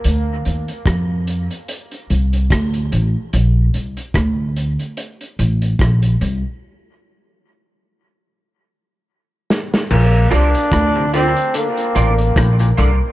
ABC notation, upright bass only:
X:1
M:4/4
L:1/16
Q:"Swing 16ths" 1/4=73
K:Bb
V:1 name="Upright bass" clef=bass
D,,2 E,, z F,,3 z3 C,,2 D,,2 A,,, z | B,,,2 C,, z D,,3 z3 A,,,2 B,,,2 C,, z | z16 | B,,,2 C,, z D,,3 z3 A,,,2 B,,,2 C,, z |]